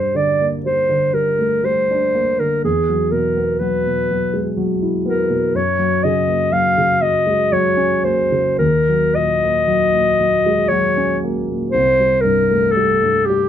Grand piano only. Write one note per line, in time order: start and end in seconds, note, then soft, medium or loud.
0.00 2.60 G2 soft
0.00 0.30 G3 soft
0.15 0.54 D3 soft
0.41 0.80 A#3 soft
0.66 1.05 G3 soft
0.89 1.29 D3 soft
1.13 1.54 G3 soft
1.39 1.64 A3 soft
1.63 2.04 G3 soft
1.91 2.30 D4 soft
2.15 2.54 A#3 soft
2.40 2.64 D3 soft
2.64 5.50 E2 soft
2.89 3.27 F#3 soft
3.12 3.50 B2 soft
3.37 3.75 B3 soft
3.61 3.99 F#3 soft
3.86 4.24 B2 soft
4.11 4.49 F#3 soft
4.33 4.58 G#3 soft
4.57 4.96 F#3 soft
4.82 5.20 E4 soft
5.06 5.44 B3 soft
5.30 5.54 B2 soft
5.54 8.56 F#2 soft
5.79 6.18 F#3 soft
6.05 6.44 C#3 soft
6.28 6.68 A#3 soft
6.52 6.93 F#3 soft
6.78 7.18 C#3 soft
7.02 7.43 F#3 soft
7.27 7.53 G#3 soft
7.52 7.94 F#3 soft
7.77 8.19 C#4 soft
8.05 8.48 A#3 soft
8.32 8.60 C#3 soft
8.59 11.67 D#2 soft
8.89 9.32 F#3 soft
9.17 9.59 A#2 soft
9.43 9.84 A#3 soft
9.68 10.08 F#3 soft
9.94 10.34 A#2 soft
10.20 10.60 F#3 soft
10.46 10.70 G#3 soft
10.71 11.11 F#3 soft
10.97 11.37 C#4 soft
11.24 11.63 A#3 soft
11.50 11.73 A#2 soft
11.74 13.49 C2 soft
12.00 12.38 G3 soft
12.24 12.64 G2 soft
12.51 12.90 A3 soft
12.76 13.17 G3 soft
13.04 13.44 G2 soft
13.30 13.49 G3 soft